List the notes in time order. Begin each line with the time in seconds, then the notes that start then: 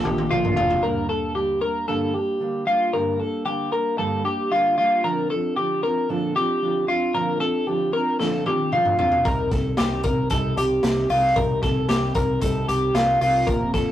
0.04 A#1 F3 A#3 D4 G4 A4, high tom
0.18 high tom
0.31 A#1 A#2 D3 F3 A#3 D4 F4 A4, mid tom
0.45 mid tom
0.56 F1 F3 A#3 D4 F4 A4, floor tom
0.70 floor tom
0.82 G2 D3 G3 A#3 D4 A#4
1.08 G3 A#3 D4 A4
1.35 D3 G3 A#3 D4 G4
1.61 G3 A#3 D4 A#4
1.87 G2 D3 G3 A#3 D4 A4
2.14 G3 A#3 D4 G4
2.40 D3 G3 A#3 D4
2.65 G3 A#3 D4 F4
2.93 G2 D3 G3 A#3 D4 A#4
3.19 G3 A#3 D4 A4
3.45 D3 G3 A#3 D4 G4
3.72 G3 A#3 D4 A#4
3.98 G2 D3 G3 A#3 D4 A4
4.24 G3 A#3 D4 G4
4.50 D3 G3 A#3 D4 F4
4.77 G3 A#3 D4 F4
5.04 A#2 D3 F3 C4 D4 A#4
5.30 F3 C4 D4 A4
5.56 D3 F3 C4 D4 G4
5.83 F3 C4 D4 A#4
6.09 A#2 D3 F3 C4 D4 A4
6.35 F3 C4 D4 G4
6.61 D3 F3 C4 D4
6.87 F3 C4 D4 F4
7.14 A#2 D3 F3 C4 D4 A#4
7.40 F3 C4 D4 A4
7.66 D3 F3 C4 D4 G4
7.92 F3 C4 D4 A#4
8.19 A#2 D3 F3 C4 D4 A4, snare
8.46 F3 C4 D4 G4, high tom
8.72 D3 F3 C4 D4 F4, mid tom
8.85 mid tom
8.98 F3 C4 D4 F4, floor tom
9.12 floor tom
9.25 C2 C3 G3 C4 D#4 A#4, kick, closed hi-hat
9.51 C2 G3 C4 D#4 A4, kick, snare, closed hi-hat
9.77 C2 C3 G3 C4 D#4 G4, snare, closed hi-hat
10.03 C2 G3 C4 D#4 A#4, kick, closed hi-hat
10.30 C2 C3 G3 C4 D#4 A4, kick, closed hi-hat
10.56 C2 G3 C4 D#4 G4, closed hi-hat
10.83 C2 C3 G3 C4 D#4, snare, closed hi-hat
11.09 C2 G3 C4 D#4 F4, open hi-hat
11.36 C2 C3 G3 C4 D#4 A#4, kick, closed hi-hat
11.62 C2 G3 C4 D#4 A4, kick, snare, closed hi-hat
11.89 C2 C3 G3 C4 D#4 G4, snare, closed hi-hat
12.15 C2 G3 C4 D#4 A#4, kick, closed hi-hat
12.41 C2 C3 G3 C4 D#4 A4, kick, closed hi-hat
12.68 C2 G3 C4 D#4 G4, closed hi-hat
12.94 C2 C3 G3 C4 D#4 F4, snare, closed hi-hat
13.20 C2 G3 C4 D#4 F4, open hi-hat
13.46 F1 F2 C3 F3 A#3 C4 A#4, kick, closed hi-hat
13.73 F1 F3 A#3 C4 A4, kick, snare, closed hi-hat